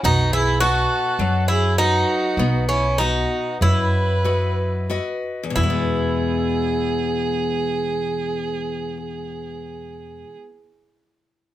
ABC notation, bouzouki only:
X:1
M:9/8
L:1/16
Q:3/8=30
K:E
V:1 name="Bouzouki"
D E F3 E D3 C D2 E4 z2 | E16- E2 |]